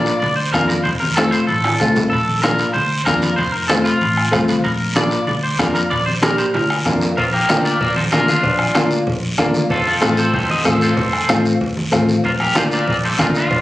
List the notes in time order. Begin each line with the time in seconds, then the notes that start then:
Already playing: A#3 D4 F4 D5
0.06 high timbale, short guiro
0.20 D2 D5, high conga, low conga, high timbale, long guiro
0.36 C5
0.52 F2 A#3 D4 F4 A#4, bombo low, bombo rim, high conga, high timbale, low timbale, short guiro
0.68 A#4, high conga, high timbale, short guiro
0.84 F1 C5, bombo low, high conga, low conga, high timbale, long guiro
1.00 A#4, high conga
1.16 A3 C4 F4 A4, bombo rim, high conga, high timbale, short guiro
1.31 C5, high timbale, short guiro
1.47 A1 A4, high conga, low conga, high timbale, long guiro
1.64 bombo rim, high conga, high timbale
1.80 D2 A3 C4 F4, bombo low, bombo rim, low conga, low timbale, short guiro
1.96 C2, low conga, low timbale, short guiro
2.10 A#1 A4, bombo low, high conga, high timbale, long guiro
2.28 high conga
2.42 A#3 D4 F4 A#4, bombo rim, high conga, high timbale, short guiro
2.59 high timbale, short guiro
2.73 D2 C5, high conga, low conga, high timbale, long guiro
3.05 F2 A#3 D4 F4 A#4, bombo low, bombo rim, high conga, high timbale, short guiro
3.22 high conga, high timbale, short guiro
3.36 F1 C5, bombo low, high conga, high timbale, long guiro
3.52 A#4
3.68 A3 C4 F4 A4, bombo rim, high conga, high timbale, short guiro
3.84 F4, high timbale, short guiro
4.01 A1, high conga, low conga, high timbale, long guiro
4.17 bombo rim
4.32 C2 A3 C4 F4, bombo low, bombo rim, high conga, high timbale, short guiro
4.48 high conga, high timbale, short guiro
4.64 A#1 A#4, bombo low, high conga, high timbale, long guiro
4.96 A#3 D4 F4 D5, bombo rim, high conga, high timbale, short guiro
5.11 high timbale, short guiro
5.27 D2 D5, high conga, low conga, high timbale, long guiro
5.43 C5
5.59 F2 A#3 D4 F4 A#4, bombo low, bombo rim, high conga, high timbale, short guiro
5.75 A#4, high timbale, short guiro
5.90 A#1 D5, bombo low, high conga, high timbale, long guiro
6.06 C5, high conga
6.22 A#3 D4 G4 A#4, bombo rim, high conga, high timbale, short guiro
6.38 C5, high timbale, short guiro
6.54 D2 A#4, high conga, low conga, high timbale, long guiro
6.70 bombo rim, high timbale
6.85 F2 A#3 D4 F4, bombo low, bombo rim, high conga, low conga, low timbale, short guiro
7.01 low timbale, short guiro
7.17 A#1 F4 A#4, bombo low, cowbell, long guiro
7.33 G4 A#4, high conga
7.49 D2 A#3 D4 F4, bombo rim, cowbell, high conga, short guiro
7.65 A#4 D5, short guiro
7.81 A#1 A#4 D5, bombo low, cowbell, high conga, low conga, long guiro
7.96 A4 C5, high conga
8.12 D2 A#3 D4 F4 A#4, bombo rim, cowbell, high conga, low timbale, short guiro
8.28 D4 F4, high conga, short guiro
8.43 A#1, bombo low, cowbell, low conga, long guiro
8.59 bombo rim, high conga
8.75 D2 A#3 D4 F4, bombo rim, cowbell, high conga, short guiro
8.91 short guiro
9.07 A#1, bombo low, cowbell, high conga, low conga, long guiro
9.38 D2 A#3 D4 F4, bombo low, bombo rim, cowbell, high conga, low timbale, short guiro
9.54 high conga, short guiro
9.70 F1 F4 A4, bombo low, cowbell, low conga, long guiro
9.87 F4 A4, high conga
10.01 A1 A3 C4 F4, bombo rim, cowbell, high conga, short guiro
10.17 A4 C5, short guiro
10.34 F1 A4 C5, bombo low, cowbell, high conga, low conga, long guiro
10.49 C5 D#5, high conga
10.65 A1 A3 C4 F4 A4 C5, bombo low, bombo rim, cowbell, high conga, low timbale, short guiro
10.81 A4 C5, short guiro
10.97 F1, bombo low, cowbell, low conga, long guiro
11.13 bombo rim, high conga
11.29 A1 A3 C4 F4, bombo rim, cowbell, high conga, short guiro
11.45 short guiro
11.61 F1, bombo low, cowbell, high conga, low conga, long guiro
11.77 high conga
11.92 A1 A3 C4 F4, bombo low, bombo rim, cowbell, high conga, low timbale, short guiro
12.08 high conga, short guiro
12.24 A#1 F4 A#4, bombo low, cowbell, low conga, long guiro
12.40 G4 A#4, bombo rim, high conga
12.55 D2 A#3 D4 F4 C5, bombo rim, cowbell, high conga, short guiro
12.71 A#4 D5, short guiro
12.87 A#1 A#4 D5, bombo low, cowbell, high conga, low conga, long guiro
13.05 A4 C5
13.18 D2 A#3 D4 F4 A#4, bombo low, bombo rim, cowbell, high conga, low conga, low timbale, short guiro
13.35 D4 F4, short guiro
13.51 A#1, bombo low, cowbell, low conga, long guiro